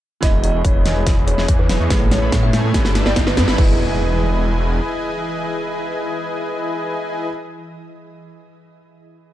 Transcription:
0.21 E1 E3 B3 E4 G#4 B4 D#5 G#5, kick, snare, closed hi-hat, riser
0.44 D#5, closed hi-hat
0.54 E1 E4 G#4 B4 D#5 C#6
0.65 E1 C#5, kick, closed hi-hat
0.86 E1 E4 G#4 B4 D#5 G#5, snare, closed hi-hat
0.96 E1 E4 G#4 B4 D#5 G#5
1.07 E1 E4 G#4 D#5, kick, snare, closed hi-hat
1.17 E1 E4 G#4 B4 D#5 B5
1.28 C#5, closed hi-hat
1.38 E1 E4 G#4 B4 D#5 G#5, snare
1.48 E2 G#4 G#5, kick, closed hi-hat
1.59 B4
1.69 E1 E4 G#4 B4 D#5 G#5, snare, closed hi-hat
1.80 E2 E4 G#4 B4 D#5 C#6
1.88 A1 A3 E4 G#4 C#5, kick, snare, closed hi-hat
2.11 C#5, snare, closed hi-hat
2.22 A1 E4 G#4 A4 C#5 B5
2.32 A2 E4 G#4 A4 C#5 A5, kick, snare, closed hi-hat
2.43 E5
2.53 A2 E4 G#4 A4 C#5 G#5, snare, closed hi-hat
2.64 A2 E4 G#4 A4 C#5 G#5
2.72 G1 G3 E4 A4 B4 D5 G5, kick, snare, closed hi-hat
2.76 B4
2.85 G1 E4 A4 B4 D5 A5, snare
2.95 snare, closed hi-hat
3.06 G1 E4 A4 B4 D5 G5, snare
3.16 G1 E4 A4 B4 D5, kick, snare, closed hi-hat
3.27 B4, snare
3.37 G2 E4 A4 B4 D5 G5, snare, closed hi-hat
3.48 G1 E4 A4 B4 D5 B5, snare
3.55 E1 E3 E4 G#4 B4 D#5 G#5, kick, crash, impact
3.59 G#4 D#5

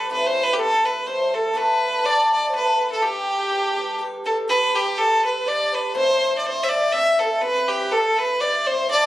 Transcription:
Already playing: G4 B4
0.09 A2 E3 G3 C4 E4 A4 B4
0.26 C5
0.42 B4
0.53 G4 A4
0.57 G3 C4 E4 A4
0.84 B4
1.06 G3 C4 E4 A4 C5
1.34 A4
1.53 D3 A3 D4 F#4 A4 B4
2.03 A3 D4 F#4 A4 D5
2.31 A3 D4 F#4 A4 D5
2.49 C5
2.53 A3 D4 F#4 A4 B4
2.79 A3 D4 F#4 A4
2.91 A4
3.01 G3 D4 G4 B4
3.50 G3 D4 G4 B4
3.77 G3 D4 G4 B4
3.99 G3 D4 G4 B4
4.24 G3 D4 G4 A4 B4
4.48 G3 D4 G4 B4
4.75 G4
4.96 G3 D4 G4 A4 B4
5.24 B4
5.44 G3 D4 G4 B4 D5
5.72 G3 D4 G4 B4
5.94 A2 E3 A3 C4 E4 C5
6.38 D5
6.43 A3 C4 E4 C5
6.63 E5
6.69 A3 C4 E4 C5 D5
6.91 A3 C4 E4 C5 E5
7.17 A3 C4 E4 A4 B4 C5
7.23 A4
7.41 C3 E3 G3 C4 E4 B4
7.68 G4
7.91 G3 C4 E4 A4 C5
8.18 B4
8.40 G3 C4 E4 C5 D5
8.65 G3 C4 E4 C5 D5
8.72 C5
8.89 D3 A3 D4 F#4 D5

